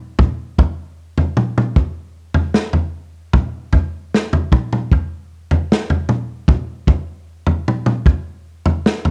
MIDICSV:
0, 0, Header, 1, 2, 480
1, 0, Start_track
1, 0, Tempo, 786370
1, 1076, Time_signature, 4, 2, 24, 8
1, 5559, End_track
2, 0, Start_track
2, 0, Title_t, "Drums"
2, 114, Note_on_c, 9, 43, 73
2, 114, Note_on_c, 9, 47, 63
2, 116, Note_on_c, 9, 36, 90
2, 175, Note_off_c, 9, 43, 0
2, 175, Note_off_c, 9, 47, 0
2, 177, Note_off_c, 9, 36, 0
2, 357, Note_on_c, 9, 36, 63
2, 359, Note_on_c, 9, 43, 76
2, 418, Note_off_c, 9, 36, 0
2, 420, Note_off_c, 9, 43, 0
2, 717, Note_on_c, 9, 43, 70
2, 778, Note_off_c, 9, 43, 0
2, 835, Note_on_c, 9, 47, 67
2, 896, Note_off_c, 9, 47, 0
2, 962, Note_on_c, 9, 47, 67
2, 1023, Note_off_c, 9, 47, 0
2, 1075, Note_on_c, 9, 36, 94
2, 1075, Note_on_c, 9, 43, 69
2, 1136, Note_off_c, 9, 36, 0
2, 1136, Note_off_c, 9, 43, 0
2, 1430, Note_on_c, 9, 43, 78
2, 1491, Note_off_c, 9, 43, 0
2, 1552, Note_on_c, 9, 38, 67
2, 1613, Note_off_c, 9, 38, 0
2, 1667, Note_on_c, 9, 43, 70
2, 1728, Note_off_c, 9, 43, 0
2, 2035, Note_on_c, 9, 43, 71
2, 2035, Note_on_c, 9, 47, 64
2, 2036, Note_on_c, 9, 36, 91
2, 2096, Note_off_c, 9, 43, 0
2, 2096, Note_off_c, 9, 47, 0
2, 2097, Note_off_c, 9, 36, 0
2, 2274, Note_on_c, 9, 43, 76
2, 2276, Note_on_c, 9, 36, 62
2, 2335, Note_off_c, 9, 43, 0
2, 2337, Note_off_c, 9, 36, 0
2, 2530, Note_on_c, 9, 38, 57
2, 2591, Note_off_c, 9, 38, 0
2, 2643, Note_on_c, 9, 43, 75
2, 2704, Note_off_c, 9, 43, 0
2, 2758, Note_on_c, 9, 36, 60
2, 2762, Note_on_c, 9, 47, 68
2, 2819, Note_off_c, 9, 36, 0
2, 2823, Note_off_c, 9, 47, 0
2, 2885, Note_on_c, 9, 47, 64
2, 2946, Note_off_c, 9, 47, 0
2, 3000, Note_on_c, 9, 36, 92
2, 3007, Note_on_c, 9, 43, 73
2, 3061, Note_off_c, 9, 36, 0
2, 3068, Note_off_c, 9, 43, 0
2, 3364, Note_on_c, 9, 43, 72
2, 3425, Note_off_c, 9, 43, 0
2, 3491, Note_on_c, 9, 38, 70
2, 3552, Note_off_c, 9, 38, 0
2, 3602, Note_on_c, 9, 43, 75
2, 3663, Note_off_c, 9, 43, 0
2, 3717, Note_on_c, 9, 47, 67
2, 3778, Note_off_c, 9, 47, 0
2, 3956, Note_on_c, 9, 36, 89
2, 3959, Note_on_c, 9, 43, 70
2, 3959, Note_on_c, 9, 47, 64
2, 4017, Note_off_c, 9, 36, 0
2, 4020, Note_off_c, 9, 43, 0
2, 4020, Note_off_c, 9, 47, 0
2, 4195, Note_on_c, 9, 36, 61
2, 4199, Note_on_c, 9, 43, 70
2, 4256, Note_off_c, 9, 36, 0
2, 4260, Note_off_c, 9, 43, 0
2, 4557, Note_on_c, 9, 43, 74
2, 4618, Note_off_c, 9, 43, 0
2, 4688, Note_on_c, 9, 47, 71
2, 4749, Note_off_c, 9, 47, 0
2, 4799, Note_on_c, 9, 47, 68
2, 4860, Note_off_c, 9, 47, 0
2, 4919, Note_on_c, 9, 36, 94
2, 4922, Note_on_c, 9, 43, 73
2, 4980, Note_off_c, 9, 36, 0
2, 4983, Note_off_c, 9, 43, 0
2, 5283, Note_on_c, 9, 43, 82
2, 5344, Note_off_c, 9, 43, 0
2, 5408, Note_on_c, 9, 38, 68
2, 5469, Note_off_c, 9, 38, 0
2, 5524, Note_on_c, 9, 43, 75
2, 5559, Note_off_c, 9, 43, 0
2, 5559, End_track
0, 0, End_of_file